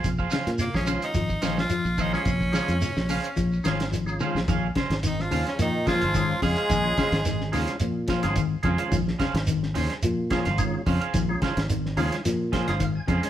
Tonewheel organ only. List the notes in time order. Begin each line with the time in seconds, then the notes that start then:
0.59 C#4 F4
0.74 D#3 G#3 C#4 F4
2.13 D#3 G#3 C#4 F4
2.52 D#3 G#3 C#4 F4
3.64 D#3 G#3 C#4 F4
4.06 D#3 G#3 C#4 F4
5.86 D#3 G#3 C#4 F4
6.15 D#3 G#3 C#4 F4
6.84 D#3 G#3 C#4 F4
7.52 D#3 G#3 C#4 F4
8.23 D#3 G#3 C#4 F4
8.63 D#3 G#3 C#4 F4
10.30 D#3 G#3 C#4 F4
10.58 D#3 G#3 C#4 F4
11.28 D#3 G#3 C#4 F4
11.97 D#3 G#3 C#4 F4
12.53 C5
12.68 D#3 G#3 C#4 F4 D#5
12.80 F5
12.95 G#5
13.07 D#3 G#3 C#4 D#4